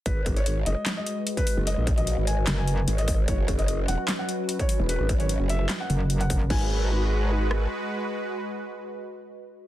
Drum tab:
CC |----------------|----------------|----------------|----------------|
HH |x-xxx-x-x-x-xxo-|x-xxx-x-x-x-xxo-|x-xxx-x-x-x-xxo-|x-xxx-x-x-x-xxo-|
CP |--------x-------|--------x-------|--------x-------|--------x-------|
SD |--------o-------|--------o-------|--------o-------|--------o-------|
BD |o-o----------o--|--o-----------o-|o-o----------o--|--o-----------o-|

CC |x---------------|----------------|
HH |----------------|----------------|
CP |----------------|----------------|
SD |----------r-----|----------------|
BD |o---------------|----------------|